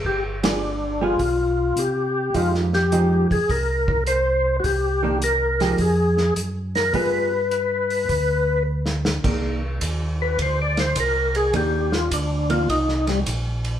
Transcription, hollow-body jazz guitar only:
X:1
M:4/4
L:1/8
Q:"Swing" 1/4=104
K:Cm
V:1 name="Hollow-body jazz guitar"
z [G,=B,FA] z [G,B,FA] z4 | [F,A,EG] z [F,A,EG] z4 z | z [E,B,D] z [F,A,EG] z4 | [G,=B,FA] z6 z |
[E,B,D] z6 z | [E,B,D] z2 [E,B,D] z4 |]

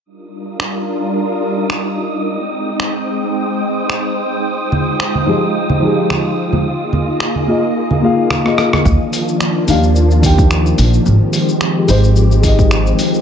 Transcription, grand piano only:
X:1
M:4/4
L:1/16
Q:"Swing 16ths" 1/4=109
K:Eb
V:1 name="Grand piano"
z16 | z16 | z6 [F,EGA] z3 [F,EGA]6 | z6 [B,FAe] z3 [B,FAf]3 [B,FAe]3 |
z6 [E,DGf] z3 [E,DGg]6 | z6 [A,EGc] z3 [A,EGe]6 |]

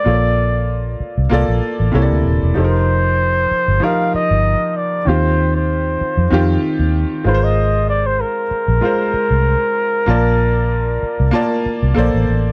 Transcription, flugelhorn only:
X:1
M:4/4
L:1/16
Q:"Swing 16ths" 1/4=96
K:Bb
V:1 name="Flugelhorn"
d6 z8 z2 | c8 f2 e4 d2 | c3 c8 z3 c e- | e2 d c B12- |
B12 z4 |]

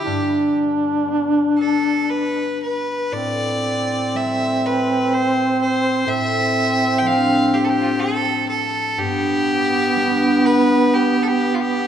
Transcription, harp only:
X:1
M:3/4
L:1/8
Q:1/4=61
K:Gmix
V:1 name="Harp" clef=bass
G,,2 [G,B,D]4 | A,,2 [G,A,C]4 | A,,2 [F,A,D]4 | G,,2 [G,B,D]4 |]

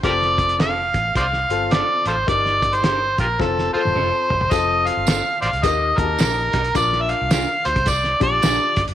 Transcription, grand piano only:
X:1
M:4/4
L:1/16
Q:"Swing" 1/4=107
K:Fmix
V:1 name="Grand piano"
[CFA]4- [CFA] z4 z [CFA]4 z2 | [EGB]4- [EGB] z3 [CFA]2 [CFA]4 z2 | [CFA]4- [CFA] z3 [EGB]2 [E_G=Ga]4 z2 | [DFB]4- [DFB] z4 z [DFG]4 z2 |]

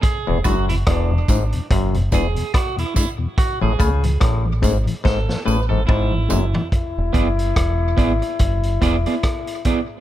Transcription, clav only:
X:1
M:4/4
L:1/16
Q:"Swing 16ths" 1/4=72
K:Emix
V:1 name="Clav" clef=bass
z E,, F,,2 E,,2 G,, z F,,2 E,, z4 z | z A,, C,2 A,,2 G,, z G,, z A,, G,, G,,2 F,, z | z16 |]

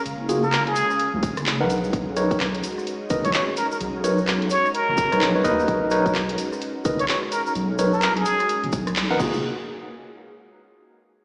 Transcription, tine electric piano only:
X:1
M:4/4
L:1/16
Q:"Swing 16ths" 1/4=128
K:Blyd
V:1 name="Tine electric piano"
z2 [A,EFG] z8 z2 [DABf]2 z | z2 [DABc]2 z6 [DABd] z4 z | z2 [DABc] z8 [DABc]2 [DABc] [DABd]2- | [DABd]2 [DABc]2 z6 [DABd] z4 z |
z2 [DABc] z8 z2 [DABf] [A,EFG]2 | z16 |]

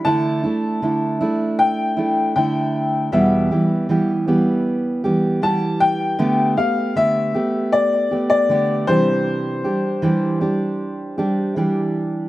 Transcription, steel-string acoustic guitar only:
X:1
M:4/4
L:1/8
Q:1/4=78
K:C
V:1 name="Steel-string acoustic guitar"
[D,A,DE] [A,DE] [D,A,DE] [A,DE]2 [A,DE] [D,A,DE]2 | [E,,B,,E,G,B,G] [E,G,B,G] [E,G,B,G] [E,G,B,G]2 [E,G,B,G] [E,G,B,G]2 | [D,A,B,G] [A,B,G] [D,A,B,G] [A,B,G]2 [A,B,G] [D,A,B,G] [C,E,G,DG]- | [C,E,G,DG] [G,DG] [E,G,DG] [G,DG]2 [G,DG] [E,G,DG]2 |]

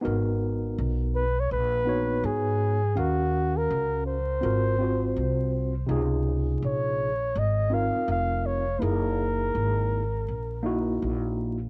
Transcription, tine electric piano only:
X:1
M:4/4
L:1/8
Q:"Swing 16ths" 1/4=82
K:C#mix
V:1 name="Tine electric piano"
[B,DFA]3 z2 [B,DFc]2 z | [CFAe]3 z [^B,EFA] [B,EF^B]2 z | [^B,,DEG]3 z2 [^B,DEA]2 z | [A,D=EG]3 z2 [A,DEF]2 z |]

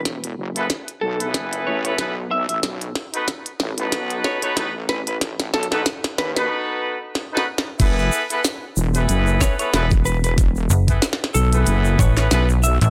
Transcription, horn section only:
X:1
M:4/4
L:1/16
Q:"Swing 16ths" 1/4=93
K:F#dor
V:1 name="Horn section"
z3 [B,EGAB] z3 [B,EGAB]4 [B,EGAB] [B,EGAB] z3 | z3 [B,DFAB] z3 [B,DFAB]4 [B,DFAB] [B,DFAB] z3 | z3 [B,DFAB] z3 [B,DFAB]4 z2 [B,DFAB] z2 | [B,EGAB]3 [B,EGAB] z3 [B,EGAB]4 [B,EGAB] [B,EGAB] z3 |
z3 [B,EGAB] z3 [B,EGAB]4 [B,EGAB] [B,EGAB] z3 |]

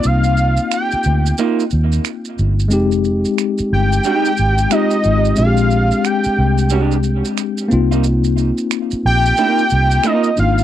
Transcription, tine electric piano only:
X:1
M:4/4
L:1/8
Q:"Swing 16ths" 1/4=90
K:Cm
V:1 name="Tine electric piano"
[B,CEF]6- [B,CEF] z | [A,CEG]6 [A,CEF]2 | [A,CDFG]6- [A,CDFG] [B,CEF]- | [B,CEF]6- [B,CEF] [B,DEF] |]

